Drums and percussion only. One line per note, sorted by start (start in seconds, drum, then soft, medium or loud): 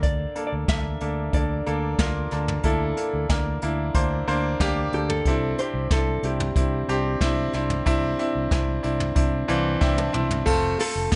0.03 kick medium
0.03 closed hi-hat medium
0.36 closed hi-hat medium
0.68 kick loud
0.68 snare loud
0.68 closed hi-hat medium
1.01 closed hi-hat medium
1.33 kick loud
1.33 closed hi-hat loud
1.66 closed hi-hat medium
1.99 kick loud
1.99 snare loud
1.99 closed hi-hat loud
2.31 snare soft
2.31 closed hi-hat medium
2.48 floor tom medium
2.64 kick medium
2.64 closed hi-hat medium
2.97 closed hi-hat medium
3.30 kick loud
3.30 snare loud
3.30 closed hi-hat medium
3.62 closed hi-hat medium
3.94 kick medium
3.94 closed hi-hat loud
4.28 closed hi-hat medium
4.60 kick loud
4.60 snare loud
4.60 closed hi-hat medium
4.93 closed hi-hat medium
5.10 floor tom medium
5.25 kick medium
5.25 closed hi-hat medium
5.58 closed hi-hat medium
5.91 kick loud
5.91 snare loud
5.91 closed hi-hat medium
6.23 closed hi-hat medium
6.40 floor tom medium
6.56 kick loud
6.56 closed hi-hat medium
6.89 closed hi-hat medium
7.21 kick loud
7.21 snare loud
7.21 closed hi-hat medium
7.53 snare soft
7.53 closed hi-hat medium
7.70 floor tom medium
7.86 kick medium
7.86 closed hi-hat medium
8.19 closed hi-hat medium
8.51 kick loud
8.51 snare loud
8.51 closed hi-hat medium
8.84 closed hi-hat medium
9.00 floor tom medium
9.16 kick loud
9.16 closed hi-hat loud
9.49 closed hi-hat medium
9.81 kick loud
9.81 snare medium
9.98 high tom medium
10.14 mid tom medium
10.31 floor tom medium
10.47 kick medium
10.47 crash medium
10.79 hi-hat pedal medium
10.79 open hi-hat medium
11.12 kick loud
11.12 snare loud
11.12 hi-hat pedal medium
11.12 open hi-hat medium